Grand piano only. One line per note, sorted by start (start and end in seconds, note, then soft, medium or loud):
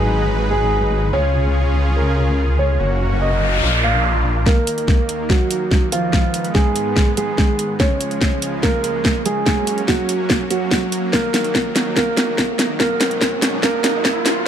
0.00 0.42 G#4 medium
0.51 1.05 G#4 medium
1.13 1.88 C#5 medium
1.96 2.51 A#4 medium
2.59 3.13 C#5 medium
3.22 3.76 D#5 medium
3.84 4.38 F5 medium
4.46 5.22 A#3 medium
4.46 5.22 A#4 medium
5.30 5.84 F#3 medium
5.30 5.84 F#4 medium
5.92 6.47 F3 medium
5.92 6.47 F4 medium
6.55 7.09 G#3 medium
6.55 7.09 G#4 medium
7.17 7.72 G#3 medium
7.17 7.72 G#4 medium
7.80 8.55 C#4 medium
7.80 8.55 C#5 loud
8.63 9.17 A#3 medium
8.63 9.17 A#4 medium
9.26 9.80 G#3 medium
9.26 9.80 G#4 medium
9.88 10.42 F#3 medium
9.88 10.42 F#4 medium
10.51 11.05 F#3 medium
10.51 11.05 F#4 medium
11.13 11.88 A#3 medium
11.13 11.88 A#4 medium
11.96 12.72 A#3 medium
11.96 12.72 A#4 medium
12.80 13.55 A#3 medium
12.80 13.55 A#4 medium
13.63 14.38 A#3 medium
13.63 14.38 A#4 loud